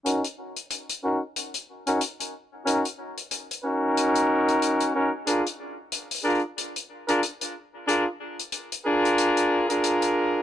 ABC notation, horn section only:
X:1
M:4/4
L:1/16
Q:"Swing 16ths" 1/4=92
K:Bbphr
V:1 name="Horn section"
[DEGB] z4 z [DEGB] z4 [DEGB] z4 | [DEGB] z4 z [DEGB]8 [DEGB] z | [=DFAB] z4 z [DFAB] z4 [DFAB] z4 | [=DFAB] z4 z [DFAB]4- [DFAB] [DFAB]4- [DFAB] |]